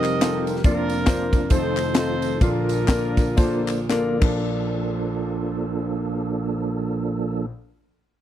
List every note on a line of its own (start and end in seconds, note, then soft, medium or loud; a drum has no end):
0.00 0.61 F1 medium
0.00 0.61 F2 medium
0.00 0.62 G3 medium
0.00 0.11 C4 medium
0.00 0.62 C4 medium
0.00 0.11 D#4 medium
0.00 0.62 D#4 medium
0.00 0.11 F4 medium
0.00 0.62 F4 medium
0.00 0.11 G4 medium
0.00 0.61 G4 medium
0.00 0.11 A#4 medium
0.00 0.60 A#4 medium
0.00 0.62 A#4 medium
0.00 0.44 D#5 loud
0.00 clap medium
0.00 tambourine medium
0.04 ride medium
0.21 0.53 C4 medium
0.21 0.53 D#4 medium
0.21 0.53 F4 medium
0.21 0.53 G4 medium
0.21 0.54 A4 medium
0.21 snare loud
0.21 clap medium
0.21 ride medium
0.21 tambourine medium
0.47 ride medium
0.47 tambourine medium
0.56 snare soft
0.64 1.47 F1 medium
0.64 1.47 F2 medium
0.64 1.49 F3 medium
0.64 0.96 A#3 medium
0.64 1.50 A#3 medium
0.64 0.96 D4 medium
0.64 1.47 D4 medium
0.64 1.50 D4 medium
0.64 0.96 F4 medium
0.64 1.47 F4 medium
0.64 1.49 F4 medium
0.64 0.96 A#4 medium
0.64 1.48 A#4 loud
0.64 0.97 D5 medium
0.64 kick loud
0.64 ride medium
0.64 tambourine medium
0.90 ride medium
0.90 tambourine medium
1.06 1.39 A#3 medium
1.06 1.40 D4 medium
1.06 1.40 F4 medium
1.06 1.40 A#4 medium
1.06 1.40 C5 medium
1.06 kick loud
1.06 snare loud
1.06 clap medium
1.06 ride medium
1.06 tambourine medium
1.33 kick loud
1.33 ride medium
1.33 tambourine medium
1.49 2.37 F1 medium
1.49 2.37 F2 medium
1.49 2.39 D#3 medium
1.49 2.39 F3 medium
1.49 2.38 A3 medium
1.49 2.39 C4 medium
1.49 1.83 C4 medium
1.49 1.84 D#4 medium
1.49 1.96 D#4 medium
1.49 2.39 F4 medium
1.49 1.84 F4 medium
1.49 1.84 A4 medium
1.49 1.95 A4 medium
1.49 1.84 C5 medium
1.49 kick loud
1.49 ride medium
1.49 tambourine loud
1.54 1.97 C5 medium
1.77 clap medium
1.77 ride medium
1.77 tambourine medium
1.94 2.28 C4 medium
1.94 2.29 D#4 medium
1.94 2.39 D#4 medium
1.94 2.29 F4 medium
1.94 2.29 A4 medium
1.94 2.38 A4 medium
1.94 2.29 D#5 medium
1.94 snare loud
1.94 clap medium
1.94 ride medium
1.94 tambourine medium
1.98 2.39 C5 loud
2.22 ride medium
2.22 tambourine medium
2.41 4.18 A#1 medium
2.41 4.18 A#2 medium
2.41 2.48 C#3 medium
2.41 4.19 F3 medium
2.41 2.76 A#3 medium
2.41 4.19 A#3 medium
2.41 2.76 D4 medium
2.41 3.86 D4 medium
2.41 2.76 F4 medium
2.41 3.86 F4 medium
2.41 4.19 F4 medium
2.41 2.76 A4 medium
2.41 2.76 A#4 medium
2.41 3.91 A#4 medium
2.41 kick loud
2.41 ride medium
2.41 tambourine medium
2.48 4.22 D3 medium
2.69 ride medium
2.69 tambourine medium
2.87 3.25 A#3 medium
2.87 3.24 D4 medium
2.87 3.25 F4 medium
2.87 3.25 A4 medium
2.87 3.25 A#4 medium
2.87 kick loud
2.87 snare loud
2.87 clap medium
2.87 ride medium
2.87 tambourine medium
3.17 kick loud
3.17 snare soft
3.17 ride medium
3.17 tambourine medium
3.37 3.76 A#3 medium
3.37 3.76 D4 medium
3.37 3.76 F4 medium
3.37 3.76 A4 medium
3.37 3.76 C5 loud
3.37 kick loud
3.37 ride medium
3.37 tambourine medium
3.68 clap medium
3.68 ride medium
3.68 tambourine medium
3.89 4.19 A#3 medium
3.89 4.20 D4 medium
3.89 4.21 F4 medium
3.89 4.22 A4 medium
3.89 4.22 A#4 medium
3.89 snare medium
3.89 clap medium
3.89 tambourine medium
4.20 7.47 A#1 medium
4.20 7.45 F3 medium
4.20 7.45 A#3 medium
4.20 7.46 A#3 medium
4.20 7.46 D4 medium
4.20 7.47 D4 medium
4.20 7.48 F4 medium
4.20 7.46 A4 loud
4.20 7.49 A4 medium
4.20 kick loud
4.20 clap medium
4.20 crash medium